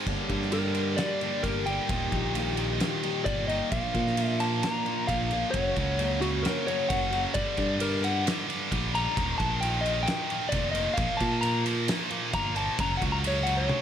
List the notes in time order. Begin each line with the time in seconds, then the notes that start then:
0.06 G1 G2 D3 G3 A#3 D4 G4, kick, crash
0.29 G2 D3 G3 A#3 D4 G4, kick, ride
0.42 snare
0.52 G2 D3 G3 A#3 D4 G4 A#4, ride
0.75 G2 D3 G3, ride
0.97 G2 D3 G3 D5, snare, ride
1.21 G2 D3 G3 A#3 D4 G4, ride
1.43 G1 G2 D3 G3 A#3 D4 G4 A#4, kick, ride
1.65 G2 D3 G3 A#3 D4 G4 G5, ride
1.69 G3
1.88 D#1 D#2 A#2 D#3 G3 G4, kick, ride
2.11 A#1 D#2 A#2 D#3 G3 G4, kick, ride
2.33 D#2 A#2 D#3 G3 G4, ride
2.57 D#2 A#2 D#3, ride
2.80 D#2 A#2 D#3, snare, ride
3.02 D#2 A#2 D#3 G3 G4, ride
3.24 G1 D#2 A#2 D#3 G3 G4 D5, kick, ride
3.47 D#2 A#2 D#3 G3 G4 D#5, ride
3.70 A#1 A#2 F3 A#3 D4 F4 A#4 F5, kick, ride
3.93 A#2 F3 A#3 D4 F4 A#4, kick, ride
4.07 snare
4.16 A#2 F3 A#3 D4 F4 A#4, ride
4.21 E5
4.39 A#2 F3 A#3 A5, ride
4.63 A#2 F3 A#3 A#5, snare, ride
4.85 A#2 F3 A#3 D4 F4 A#4, ride
5.07 A#1 A#2 F3 A#3 D4 F4 A#4 F5, kick, ride
5.29 A#2 F3 A#3 D4 F4 A#4, ride
5.51 F#1 F#2 C#3 F#3 C#5, kick, ride
5.55 A#3 C#4 F#4
5.76 C#2 F#2 C#3 F#3 A#3 C#4 F#4, kick, ride
5.97 F#2 C#3 F#3 A#3 C#4 F#4, ride
6.21 F#2 C#3 F#3 F#4, ride
6.43 F#2 C#3 F#3 A#4, snare, ride
6.66 F#2 C#3 F#3 A#3 C#4 F#4 C#5, ride
6.88 F#1 F#2 C#3 F#3 A#3 C#4 F#4 F#5, kick, ride
7.11 F#2 C#3 F#3 A#3 C#4 F#4, ride
7.34 G1 G2 D3 G3 D5, kick, ride
7.57 G2 D3 G3, kick, ride
7.79 G2 D3 G3 A#4, ride
8.01 G2 D3 G3 F#5, ride
8.25 G2 D3 G3, snare, ride
8.48 G2 D3 G3, ride
8.71 A#1 G2 D3 G3, kick, ride
8.93 G2 D3 G3 A#5, ride
9.16 D#1 D#2 A#2 D#3, kick, ride
9.38 A#1 D#2 A#2 D#3 A5, kick, ride
9.61 D#2 A#2 D#3 G5, ride
9.81 D#2 A#2 D#5
9.86 D#3, ride
10.03 G5
10.07 D#2 A#2 D#3, snare, ride
10.30 D#2 A#2 D#3, ride
10.49 D#2 D5, kick, ride
10.53 F1 A#2 D#3
10.71 D#2 A#2 D#5, ride
10.76 D#3
10.94 A#2 F3 F5, ride
10.98 A#1 A#3, kick
11.17 A#2 F3 A#3 A5, kick, ride
11.21 A#2
11.41 A#2 F3 A#3 A#5, ride
11.65 A#2 F3 A#3, ride
11.88 A#2 F3 A#3, snare, ride
12.10 A#2 F3 A#3, ride
12.32 G1 A#2 F3 A#3 A#5, kick, ride
12.55 A#2 F3 A#3 A5, ride
12.79 F#1 F#2 C#3 F#3 A#5, kick, ride
12.97 F#2 F#5
13.02 C#2 C#3 F#3, kick, ride
13.12 A#5
13.24 F#2 C#3 F#3 C#5, ride
13.43 F#2 C#3 F#5, ride
13.48 F#3
13.57 C#5
13.69 F#2 C#3 F#3, high tom